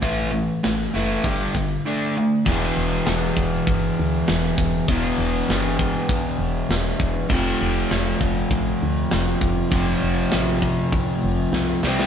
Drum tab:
CC |----------------|x---------------|----------------|x---------------|
HH |o-o-o-o-o-o-----|--o-o-o-o-o-o-o-|o-o-o-o-o-o-o-o-|--o-o-o-o-o-o-o-|
SD |----o-----o-----|----o-------o---|----o-------o---|----o-------o---|
BD |o-------o-o-----|o-----o-o-----o-|o-----o-o-----o-|o-----o-o-----o-|

CC |----------------|
HH |o-o-o-o-o-o-----|
SD |----o-------o-oo|
BD |o-----o-o-------|